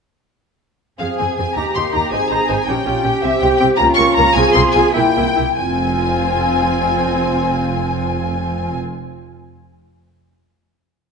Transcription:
0.99 F2 C4 G#4 F5
1.17 F2 C4 G#4 G#5
1.35 F2 G#5
1.39 C4 G#4
1.55 D#2 A#3 D#4 G4 A#5
1.75 D#2 D#4 G4 C6
1.93 D#2 D#4 G4 A#5
2.10 G#1 C4 D#4 G#4 C5 G#5
2.29 G#1 D#4 C5 A#5
2.48 G#1 D#4 C5 G#5
2.66 A#1 C#4 D#4 G4 G5
2.86 A#1 C#4 F4 G4
3.04 A#1 C#4 G4
3.22 C2 C4 G4 E5
3.40 C2 C4 G4 G5
3.58 C2 C4 G4 G5
3.76 C#2 A#3 C#4 F4 A#4 A#5
3.95 C#2 A#3 A#4 C#6
4.14 C#2 A#3 A#4 A#5
4.33 C2 C4 F4 G#4 G#5
4.53 C2 C4 F4 C6
4.72 C2 C4 F4 G#5
4.91 C2 A#3 E4 G5
4.96 A#3 E4 G5
5.16 C2 A#3 E4
5.36 C2 A#3 E4
5.56 F1 F2 C4 F4 G#5

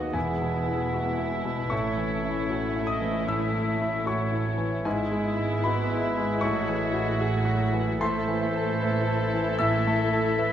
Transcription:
Already playing: D#2 D#3 F#3 B3 D#4 F#4 G#4 D#5 F#5
0.13 E1 E2 G#3 B3 E4 G#4 E5 G#5
0.42 B2
0.68 E4
0.94 F#4
1.19 E4
1.45 B2
1.70 A1 A2 A3 C#4 C#5 C#6
1.97 E3
2.25 E4
2.50 F#4
2.76 E4
2.87 D#5 D#6
3.01 E3
3.26 A2 E5 E6
3.53 A3
3.82 E4
4.06 F#4 C#5 C#6
4.33 E4
4.58 E3
4.85 G#1 G#2 G#3 B3 E4 G#4 E5 G#5
5.11 G#3
5.37 E4
5.64 F#4 B4 B5
5.91 E4
6.18 G#3
6.41 A1 A2 A3 F#4 C#5 C#6
6.45 A2
6.69 E3
6.93 F#4
7.19 F#3 G#4
7.45 F#4
7.73 E3
8.00 A2 A3 E4 A4 C5 E5 C6
8.28 E3
8.42 A3 E5
8.56 A4
8.81 A3 B4 E5
9.07 A4
9.21 A3 E5
9.33 E3
9.59 A2 A3 E5 E6
9.87 A3
9.99 A3 E5
10.13 A4
10.38 A3 B4 E5

